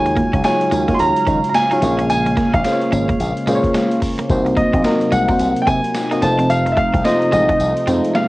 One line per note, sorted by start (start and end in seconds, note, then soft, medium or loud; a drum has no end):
0.00 0.21 D#2 loud
0.00 4.26 C#3 medium
0.00 1.80 F#3 medium
0.00 0.36 G#3 medium
0.00 4.26 G#3 medium
0.00 0.36 D#4 medium
0.00 0.36 F4 medium
0.00 0.36 F#4 medium
0.00 0.37 C#5 medium
0.00 4.26 F5 medium
0.00 0.43 G#5 loud
0.06 muted clean electric guitar stroke soft
0.06 closed hi-hat soft
0.17 0.30 A#3 medium
0.17 kick medium
0.17 closed hi-hat medium
0.33 0.41 C#2 medium
0.33 0.42 C#4 medium
0.33 kick medium
0.33 closed hi-hat medium
0.44 0.79 G#3 medium
0.44 0.79 D#4 medium
0.44 0.79 F4 medium
0.44 0.79 F#4 medium
0.44 0.80 C#5 loud
0.44 0.96 G#5 loud
0.44 muted clean electric guitar stroke soft
0.44 snare loud
0.44 closed hi-hat medium
0.44 tambourine medium
0.61 closed hi-hat soft
0.71 0.92 D#2 medium
0.71 0.85 G#3 medium
0.71 closed hi-hat medium
0.71 tambourine medium
0.88 1.53 G#3 medium
0.88 0.97 A#3 medium
0.88 1.53 D#4 medium
0.88 1.53 F4 medium
0.88 1.53 F#4 medium
0.88 1.53 C#5 medium
0.88 kick medium
0.88 closed hi-hat medium
0.94 1.00 C6 medium
0.99 1.11 D#2 loud
0.99 1.48 A#5 loud
0.99 closed hi-hat medium
0.99 tambourine medium
1.16 closed hi-hat medium
1.27 1.39 D#3 loud
1.27 1.40 C#4 medium
1.27 kick medium
1.27 closed hi-hat medium
1.27 tambourine medium
1.44 closed hi-hat medium
1.49 1.55 A#5 medium
1.54 2.08 G#5 loud
1.54 snare loud
1.54 closed hi-hat medium
1.54 tambourine medium
1.71 1.82 G#3 medium
1.71 1.80 D#4 medium
1.71 1.82 D#4 medium
1.71 1.82 F4 medium
1.71 1.83 F#4 medium
1.71 1.82 C#5 medium
1.71 closed hi-hat medium
1.82 2.33 A#1 loud
1.82 2.51 A#3 medium
1.82 6.18 A#3 medium
1.82 2.51 C#4 medium
1.82 2.51 F4 medium
1.82 2.52 G#4 medium
1.82 2.52 C#5 medium
1.82 muted clean electric guitar stroke soft
1.82 closed hi-hat medium
1.82 tambourine medium
1.99 2.07 C#4 medium
1.99 closed hi-hat soft
2.10 2.51 G#5 loud
2.10 closed hi-hat medium
2.10 tambourine medium
2.26 muted clean electric guitar stroke soft
2.26 closed hi-hat soft
2.37 2.50 A#3 medium
2.37 kick medium
2.37 snare medium
2.37 closed hi-hat medium
2.53 2.61 A#1 medium
2.53 2.62 D#4 medium
2.53 3.98 F5 medium
2.53 kick loud
2.53 closed hi-hat medium
2.64 3.34 A#3 medium
2.64 3.34 C#4 medium
2.64 3.34 F4 medium
2.64 3.34 G#4 medium
2.64 2.73 C5 medium
2.64 muted clean electric guitar stroke soft
2.64 snare loud
2.64 closed hi-hat medium
2.64 tambourine medium
2.72 3.38 C#5 medium
2.81 closed hi-hat soft
2.92 3.12 G#1 medium
2.92 3.05 C#4 medium
2.92 closed hi-hat medium
2.92 tambourine medium
3.09 3.17 A#3 medium
3.09 kick medium
3.09 closed hi-hat medium
3.20 3.32 A#1 loud
3.20 closed hi-hat medium
3.20 tambourine medium
3.37 closed hi-hat medium
3.47 3.59 A#2 loud
3.47 3.60 G#3 medium
3.47 4.16 A#3 loud
3.47 4.16 C#4 medium
3.47 4.16 F4 medium
3.47 4.17 G#4 medium
3.47 3.56 C5 medium
3.47 closed hi-hat medium
3.47 tambourine medium
3.55 4.20 C#5 loud
3.64 kick medium
3.64 closed hi-hat medium
3.74 3.88 G#3 medium
3.74 snare loud
3.74 closed hi-hat medium
3.74 tambourine medium
3.91 closed hi-hat medium
4.02 muted clean electric guitar stroke soft
4.02 kick medium
4.02 open hi-hat medium
4.02 tambourine medium
4.19 4.27 A#3 medium
4.19 closed hi-hat medium
4.30 4.61 C2 loud
4.30 8.28 C3 medium
4.30 6.20 F#3 medium
4.30 4.76 A#3 medium
4.30 4.76 C4 medium
4.30 8.28 D#4 medium
4.30 4.77 D#4 medium
4.30 4.77 F#4 medium
4.30 4.77 C5 loud
4.30 kick loud
4.30 closed hi-hat medium
4.30 tambourine medium
4.46 muted clean electric guitar stroke soft
4.46 closed hi-hat soft
4.57 4.70 A#3 medium
4.57 5.08 D#5 medium
4.57 kick medium
4.57 closed hi-hat medium
4.74 4.82 A#1 medium
4.74 4.82 C4 medium
4.74 kick loud
4.74 closed hi-hat medium
4.84 5.19 A#3 medium
4.84 5.19 C4 medium
4.84 5.20 D#4 medium
4.84 5.20 F#4 medium
4.84 5.20 A#4 medium
4.84 muted clean electric guitar stroke soft
4.84 snare loud
4.84 closed hi-hat medium
4.84 tambourine medium
5.01 closed hi-hat soft
5.12 5.32 C2 medium
5.12 5.25 G#3 medium
5.12 5.58 F#5 loud
5.12 closed hi-hat medium
5.12 tambourine medium
5.29 5.37 A#3 medium
5.29 5.93 A#3 medium
5.29 5.93 C4 medium
5.29 5.93 D#4 medium
5.29 5.93 F#4 medium
5.29 5.94 C5 medium
5.29 kick medium
5.29 closed hi-hat medium
5.39 5.52 C2 medium
5.39 closed hi-hat medium
5.39 tambourine medium
5.56 closed hi-hat medium
5.62 5.67 G5 medium
5.67 5.79 C3 loud
5.67 5.80 C4 medium
5.67 6.24 G#5 loud
5.67 kick medium
5.67 closed hi-hat medium
5.67 tambourine medium
5.84 closed hi-hat medium
5.95 snare loud
5.95 closed hi-hat medium
5.95 tambourine loud
6.11 6.22 A#3 medium
6.11 6.22 C4 medium
6.11 6.20 D#4 medium
6.11 6.22 D#4 medium
6.11 6.23 F#4 medium
6.11 6.23 D#5 medium
6.11 closed hi-hat medium
6.22 6.73 F1 loud
6.22 8.28 F3 medium
6.22 8.28 A3 medium
6.22 6.92 A3 medium
6.22 6.92 C4 medium
6.22 6.92 D#4 medium
6.22 6.92 F4 medium
6.22 6.92 C5 medium
6.22 6.51 A5 loud
6.22 muted clean electric guitar stroke soft
6.22 closed hi-hat medium
6.22 tambourine medium
6.39 6.47 C4 medium
6.39 closed hi-hat medium
6.50 6.73 F5 medium
6.50 closed hi-hat medium
6.50 tambourine medium
6.66 muted clean electric guitar stroke soft
6.66 closed hi-hat soft
6.72 6.77 E5 medium
6.77 6.90 A3 medium
6.77 7.03 F5 medium
6.77 kick medium
6.77 closed hi-hat medium
6.94 7.02 C2 loud
6.94 7.02 C4 medium
6.94 kick loud
6.94 closed hi-hat medium
7.04 7.74 A3 medium
7.04 7.74 C4 medium
7.04 7.74 D#4 medium
7.04 7.75 F4 medium
7.04 7.75 C5 medium
7.04 7.30 D#5 medium
7.04 muted clean electric guitar stroke soft
7.04 snare loud
7.04 closed hi-hat medium
7.04 tambourine medium
7.22 closed hi-hat soft
7.32 7.52 A1 medium
7.32 7.46 G#3 medium
7.32 8.17 D#5 medium
7.32 closed hi-hat medium
7.32 tambourine medium
7.49 7.58 A3 medium
7.49 kick medium
7.49 closed hi-hat medium
7.60 7.72 C2 loud
7.60 closed hi-hat medium
7.60 tambourine medium
7.77 closed hi-hat medium
7.87 7.99 F2 loud
7.87 7.95 G#3 medium
7.87 8.01 C4 medium
7.87 8.28 C4 medium
7.87 8.28 D#4 medium
7.87 8.28 F4 medium
7.87 8.28 C5 medium
7.87 closed hi-hat medium
7.87 tambourine medium
7.94 8.28 A3 medium
8.05 closed hi-hat medium
8.15 8.28 G#3 medium
8.15 8.28 F5 loud
8.15 snare loud
8.15 closed hi-hat medium
8.15 tambourine medium